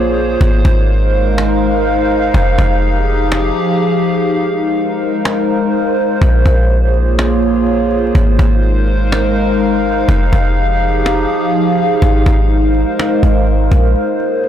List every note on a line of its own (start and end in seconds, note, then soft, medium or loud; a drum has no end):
0.00 0.37 A#1 loud
0.00 0.39 A#3 medium
0.00 0.39 F4 medium
0.00 0.39 G#4 medium
0.00 2.30 C5 medium
0.00 0.39 C#5 medium
0.41 0.64 G#1 loud
0.41 2.32 G#3 medium
0.41 4.24 D#4 medium
0.41 2.32 A#4 medium
0.41 6.17 F5 medium
0.41 cajon bass loud
0.65 2.30 G#1 loud
0.65 cajon bass loud
1.38 cajon slap loud
2.34 2.58 F1 loud
2.34 4.26 F3 medium
2.34 4.26 G4 medium
2.34 4.26 G#4 medium
2.34 cajon bass loud
2.58 3.51 F1 loud
2.58 cajon bass loud
3.32 cajon slap loud
4.28 6.19 G#3 medium
4.28 6.19 D#4 medium
4.28 6.20 A#4 medium
4.28 8.11 C5 medium
5.25 cajon slap loud
6.21 6.45 A#1 loud
6.21 8.13 A#3 medium
6.21 8.13 F4 medium
6.21 8.13 G#4 medium
6.21 8.13 C#5 medium
6.21 cajon bass loud
6.46 8.11 A#1 loud
6.46 cajon bass loud
6.70 cajon slap soft
6.94 cajon slap soft
7.19 cajon slap loud
7.42 cajon slap soft
7.66 cajon slap soft
7.91 cajon slap soft
7.99 cajon slap soft
8.07 cajon slap soft
8.15 8.38 G#1 loud
8.15 10.07 G#3 medium
8.15 13.92 D#4 medium
8.15 10.07 A#4 medium
8.15 10.07 C5 medium
8.15 13.92 F5 medium
8.15 cajon bass loud
8.39 10.05 G#1 loud
8.39 cajon bass loud
8.63 cajon slap soft
8.87 cajon slap soft
9.12 cajon slap loud
9.36 cajon slap soft
9.60 cajon slap soft
9.84 cajon slap soft
9.92 cajon slap soft
10.00 cajon slap soft
10.09 10.32 F1 loud
10.09 12.00 F3 medium
10.09 12.00 G4 medium
10.09 12.00 G#4 medium
10.09 cajon bass loud
10.33 11.26 F1 loud
10.33 cajon bass loud
10.57 cajon slap soft
10.81 cajon slap soft
11.06 cajon slap loud
11.30 cajon slap soft
11.54 cajon slap soft
11.78 cajon slap soft
11.86 cajon slap soft
11.94 cajon slap soft
12.02 12.25 G#1 loud
12.02 13.94 G#3 medium
12.02 13.94 A#4 medium
12.02 13.94 C5 medium
12.02 cajon bass loud
12.26 12.84 G#1 loud
12.26 cajon bass loud
12.50 cajon slap soft
12.75 cajon slap soft
12.99 cajon slap loud
13.23 13.69 G#1 loud
13.23 cajon bass medium
13.31 cajon slap soft
13.39 cajon slap soft
13.47 cajon slap soft
13.71 13.95 A#1 loud
13.71 cajon bass medium
13.79 cajon slap soft
13.88 cajon slap soft
13.96 14.49 A#3 medium
13.96 14.49 F4 medium
13.96 14.49 G#4 medium
13.96 14.49 C5 medium
13.96 14.49 C#5 medium
13.96 cajon slap soft
14.20 cajon slap soft
14.44 cajon slap soft